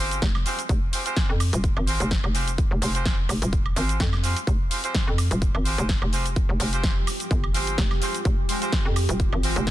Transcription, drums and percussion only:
0.11 closed hi-hat, shaker
0.22 kick, snare, closed hi-hat, shaker
0.35 snare, high woodblock
0.46 open hi-hat, shaker
0.59 closed hi-hat, shaker
0.69 kick, closed hi-hat, shaker
0.93 open hi-hat, shaker
1.06 closed hi-hat, shaker
1.17 kick, snare, closed hi-hat, shaker
1.40 open hi-hat, high woodblock, shaker
1.53 closed hi-hat, shaker
1.64 kick, closed hi-hat, shaker
1.77 high woodblock
1.87 open hi-hat, shaker
2.00 closed hi-hat, shaker
2.11 kick, snare, closed hi-hat, shaker
2.24 high woodblock
2.35 open hi-hat, shaker
2.48 closed hi-hat, shaker
2.58 kick, closed hi-hat, shaker
2.82 open hi-hat, shaker
2.95 closed hi-hat, shaker
3.06 kick, snare, closed hi-hat, shaker
3.29 open hi-hat, high woodblock, shaker
3.42 closed hi-hat, shaker
3.53 kick, closed hi-hat, shaker
3.66 high woodblock
3.76 open hi-hat, shaker
3.89 closed hi-hat, shaker
4.00 kick, snare, closed hi-hat, shaker
4.13 snare, high woodblock
4.24 open hi-hat, shaker
4.37 closed hi-hat, shaker
4.47 kick, closed hi-hat, shaker
4.71 open hi-hat, shaker
4.84 closed hi-hat, shaker
4.95 kick, snare, closed hi-hat, shaker
5.18 open hi-hat, high woodblock, shaker
5.31 closed hi-hat, shaker
5.42 kick, closed hi-hat, shaker
5.55 high woodblock
5.65 open hi-hat, shaker
5.78 closed hi-hat, shaker
5.89 kick, snare, closed hi-hat, shaker
6.02 high woodblock
6.13 open hi-hat, shaker
6.26 closed hi-hat, shaker
6.36 kick, closed hi-hat, shaker
6.60 open hi-hat, shaker
6.73 closed hi-hat, shaker
6.84 kick, snare, closed hi-hat, shaker
7.07 open hi-hat, high woodblock, shaker
7.20 closed hi-hat, shaker
7.31 kick, closed hi-hat, shaker
7.44 high woodblock
7.54 open hi-hat, shaker
7.67 closed hi-hat, shaker
7.78 kick, snare, closed hi-hat, shaker
7.91 snare, high woodblock
8.02 open hi-hat, shaker
8.14 closed hi-hat, shaker
8.25 kick, closed hi-hat, shaker
8.49 open hi-hat, shaker
8.62 closed hi-hat, shaker
8.73 kick, snare, closed hi-hat, shaker
8.96 open hi-hat, high woodblock, shaker
9.09 closed hi-hat, shaker
9.20 kick, closed hi-hat, shaker
9.33 high woodblock
9.43 open hi-hat, shaker
9.56 closed hi-hat, shaker
9.67 kick, snare, closed hi-hat

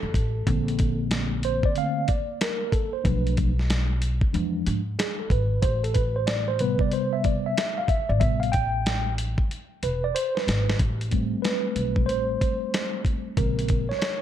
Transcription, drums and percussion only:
0.14 kick, closed hi-hat
0.47 kick, closed hi-hat
0.68 closed hi-hat
0.79 kick, closed hi-hat
1.11 snare, closed hi-hat
1.43 closed hi-hat
1.63 kick
1.76 closed hi-hat
2.08 kick, closed hi-hat
2.41 snare, closed hi-hat
2.72 kick, closed hi-hat
3.05 kick, closed hi-hat
3.27 closed hi-hat
3.37 kick, closed hi-hat
3.59 snare
3.70 snare, closed hi-hat
4.02 closed hi-hat
4.21 kick
4.34 closed hi-hat
4.66 closed hi-hat
4.99 snare, closed hi-hat
5.30 kick, closed hi-hat
5.63 kick, closed hi-hat
5.84 closed hi-hat
5.95 kick, closed hi-hat
6.27 snare, closed hi-hat
6.59 closed hi-hat
6.79 kick
6.91 closed hi-hat
7.24 kick, closed hi-hat
7.58 snare, closed hi-hat
7.88 kick, closed hi-hat
8.21 kick, closed hi-hat
8.43 closed hi-hat
8.53 kick, closed hi-hat
8.86 snare, closed hi-hat
9.18 closed hi-hat
9.38 kick
9.51 closed hi-hat
9.83 closed hi-hat
10.16 closed hi-hat
10.37 snare
10.48 snare, closed hi-hat
10.70 snare
10.79 kick, closed hi-hat
11.01 closed hi-hat
11.11 kick, closed hi-hat
11.45 snare, closed hi-hat
11.76 closed hi-hat
11.96 kick
12.09 closed hi-hat
12.41 kick, closed hi-hat
12.74 snare, closed hi-hat
13.05 kick, closed hi-hat
13.37 kick, closed hi-hat
13.59 closed hi-hat
13.68 kick, closed hi-hat
13.92 snare
14.02 snare, closed hi-hat

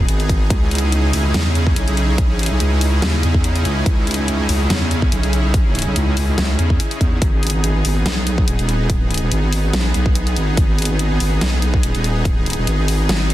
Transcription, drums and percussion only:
0.09 closed hi-hat
0.20 closed hi-hat
0.29 kick, closed hi-hat
0.50 kick, closed hi-hat
0.71 closed hi-hat
0.75 closed hi-hat
0.78 closed hi-hat
0.92 closed hi-hat
1.13 open hi-hat
1.34 snare, closed hi-hat
1.55 closed hi-hat
1.67 kick
1.76 closed hi-hat
1.88 closed hi-hat
1.97 closed hi-hat
2.18 kick, closed hi-hat
2.39 closed hi-hat
2.43 closed hi-hat
2.46 closed hi-hat
2.60 closed hi-hat
2.81 open hi-hat
3.02 snare, closed hi-hat
3.23 closed hi-hat
3.34 kick
3.44 closed hi-hat
3.56 closed hi-hat
3.65 closed hi-hat
3.86 kick, closed hi-hat
4.07 closed hi-hat
4.11 closed hi-hat
4.14 closed hi-hat
4.28 closed hi-hat
4.49 open hi-hat
4.70 snare, closed hi-hat
4.91 closed hi-hat
5.02 kick
5.12 closed hi-hat
5.23 closed hi-hat
5.33 closed hi-hat
5.54 kick, closed hi-hat
5.75 closed hi-hat
5.79 closed hi-hat
5.82 closed hi-hat
5.96 closed hi-hat
6.17 open hi-hat
6.38 snare, closed hi-hat
6.59 closed hi-hat
6.70 kick
6.80 closed hi-hat
6.91 closed hi-hat
7.01 kick, closed hi-hat
7.22 kick, closed hi-hat
7.43 closed hi-hat
7.47 closed hi-hat
7.50 closed hi-hat
7.64 closed hi-hat
7.85 open hi-hat
8.06 snare, closed hi-hat
8.27 closed hi-hat
8.38 kick
8.48 closed hi-hat
8.59 closed hi-hat
8.69 closed hi-hat
8.90 kick, closed hi-hat
9.11 closed hi-hat
9.14 closed hi-hat
9.18 closed hi-hat
9.32 closed hi-hat
9.53 open hi-hat
9.73 snare, closed hi-hat
9.94 closed hi-hat
10.06 kick
10.15 closed hi-hat
10.27 closed hi-hat
10.36 closed hi-hat
10.57 kick, closed hi-hat
10.78 closed hi-hat
10.82 closed hi-hat
10.85 closed hi-hat
10.99 closed hi-hat
11.20 open hi-hat
11.41 snare, closed hi-hat
11.62 closed hi-hat
11.74 kick
11.83 closed hi-hat
11.95 closed hi-hat
12.04 closed hi-hat
12.25 kick, closed hi-hat
12.46 closed hi-hat
12.50 closed hi-hat
12.53 closed hi-hat
12.67 closed hi-hat
12.88 open hi-hat
13.09 snare, closed hi-hat
13.30 closed hi-hat

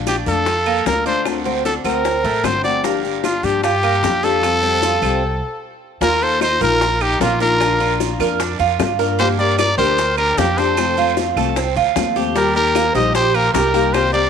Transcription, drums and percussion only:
0.07 high bongo, short guiro, claves, maracas
0.26 short guiro, maracas
0.46 high bongo, long guiro, maracas
0.66 claves, maracas
0.86 high bongo, low bongo, short guiro, maracas
1.06 short guiro, maracas
1.25 high bongo, long guiro, claves, maracas
1.45 high bongo, maracas
1.65 high bongo, short guiro, maracas
1.84 short guiro, claves, maracas
2.05 high bongo, long guiro, maracas
2.25 high bongo, maracas
2.44 high bongo, low bongo, short guiro, claves, maracas
2.64 high bongo, short guiro, maracas
2.84 high bongo, long guiro, maracas
3.05 maracas
3.24 high bongo, short guiro, claves, maracas
3.43 short guiro, maracas
3.63 high bongo, long guiro, maracas
3.84 claves, maracas
4.03 high bongo, low bongo, short guiro, maracas
4.23 short guiro, maracas
4.43 high bongo, long guiro, claves, maracas
4.63 high bongo, maracas
4.82 high bongo, short guiro, maracas
5.02 short guiro, claves, maracas
6.01 high bongo, long guiro, maracas
6.22 maracas
6.41 high bongo, short guiro, claves, maracas
6.61 short guiro, maracas
6.81 high bongo, long guiro, maracas
7.01 claves, maracas
7.21 high bongo, low bongo, short guiro, maracas
7.41 short guiro, maracas
7.61 high bongo, long guiro, claves, maracas
7.81 maracas
8.00 high bongo, short guiro, maracas
8.20 high bongo, short guiro, claves, maracas
8.40 high bongo, long guiro, maracas
8.60 high bongo, maracas
8.80 high bongo, low bongo, short guiro, claves, maracas
8.99 high bongo, short guiro, maracas
9.19 high bongo, long guiro, maracas
9.39 maracas
9.59 high bongo, short guiro, claves, maracas
9.78 short guiro, maracas
9.98 high bongo, long guiro, maracas
10.18 claves, maracas
10.38 high bongo, low bongo, short guiro, maracas
10.58 short guiro, maracas
10.77 high bongo, long guiro, claves, maracas
10.97 maracas
11.17 high bongo, short guiro, maracas
11.37 high bongo, short guiro, claves, maracas
11.56 high bongo, long guiro, maracas
11.76 high bongo, maracas
11.96 high bongo, low bongo, short guiro, claves, maracas
12.16 high bongo, short guiro, maracas
12.36 high bongo, long guiro, maracas
12.56 maracas
12.75 high bongo, short guiro, claves, maracas
12.95 short guiro, maracas
13.15 high bongo, long guiro, maracas
13.34 claves, maracas
13.54 high bongo, low bongo, short guiro, maracas
13.74 short guiro, maracas
13.94 high bongo, long guiro, claves, maracas
14.14 maracas

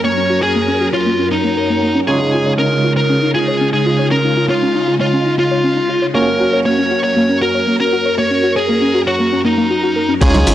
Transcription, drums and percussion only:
10.22 kick, closed hi-hat, crash, cabasa
10.34 closed hi-hat, high conga, cabasa
10.47 open hi-hat, cabasa

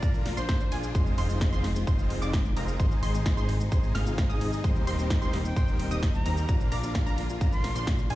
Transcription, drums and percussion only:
0.03 kick, ride, shaker
0.14 shaker
0.26 snare, open hi-hat, ride
0.37 shaker
0.49 kick, snare, ride, shaker
0.60 shaker
0.72 open hi-hat, ride
0.83 shaker
0.95 kick, ride, shaker
1.06 shaker
1.18 open hi-hat, ride
1.30 shaker
1.41 kick, snare, ride, shaker
1.53 shaker
1.64 snare, open hi-hat, ride
1.76 shaker
1.87 kick, ride, shaker
1.99 shaker
2.10 open hi-hat, ride
2.22 shaker
2.33 kick, snare, ride, shaker
2.45 shaker
2.57 open hi-hat, ride
2.68 shaker
2.80 kick, ride, shaker
2.91 shaker
3.03 open hi-hat, ride
3.14 shaker
3.26 kick, snare, ride, shaker
3.38 shaker
3.49 open hi-hat, ride
3.61 shaker
3.72 kick, ride, shaker
3.84 shaker
3.95 snare, open hi-hat, ride
4.07 shaker
4.18 kick, snare, ride, shaker
4.30 shaker
4.41 open hi-hat, ride
4.53 shaker
4.64 kick, ride, shaker
4.76 shaker
4.87 open hi-hat, ride
4.99 shaker
5.10 kick, snare, ride, shaker
5.22 shaker
5.33 snare, open hi-hat, ride
5.45 shaker
5.56 kick, ride, shaker
5.68 shaker
5.80 open hi-hat, ride
5.91 shaker
6.03 kick, snare, ride, shaker
6.14 shaker
6.26 open hi-hat, ride
6.37 shaker
6.49 kick, ride, shaker
6.60 shaker
6.72 open hi-hat, ride
6.83 shaker
6.95 kick, snare, ride, shaker
7.07 shaker
7.18 open hi-hat, ride
7.30 shaker
7.41 kick, ride, shaker
7.53 shaker
7.64 snare, open hi-hat, ride
7.76 shaker
7.87 kick, snare, ride, shaker
7.99 shaker
8.10 open hi-hat, ride

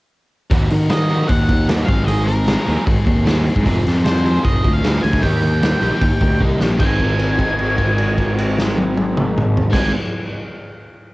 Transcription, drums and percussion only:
0.51 kick, open hi-hat
0.70 open hi-hat
0.90 snare, open hi-hat
1.09 open hi-hat
1.29 kick, open hi-hat
1.49 kick, open hi-hat
1.69 snare, open hi-hat
1.88 kick, open hi-hat
2.08 open hi-hat
2.28 open hi-hat
2.47 snare, open hi-hat
2.68 open hi-hat
2.87 kick, open hi-hat
3.07 kick, open hi-hat
3.27 snare, open hi-hat
3.46 open hi-hat
3.56 kick
3.66 kick, open hi-hat
3.86 snare, open hi-hat
4.05 snare, open hi-hat
4.26 open hi-hat
4.45 kick, open hi-hat
4.64 kick, open hi-hat
4.84 snare, open hi-hat
5.04 open hi-hat
5.13 kick, snare
5.23 kick, open hi-hat
5.42 open hi-hat
5.63 snare, open hi-hat
5.83 open hi-hat
6.01 kick, open hi-hat
6.21 kick, open hi-hat
6.41 kick
6.61 snare
6.80 kick, crash
7.00 kick, crash
7.19 crash
7.39 kick, crash
7.59 crash
7.78 kick, crash
7.98 crash
8.18 kick, crash
8.38 crash
8.58 snare
8.78 high tom
8.97 high tom
9.17 mid tom
9.38 mid tom
9.57 floor tom
9.73 kick, snare, crash

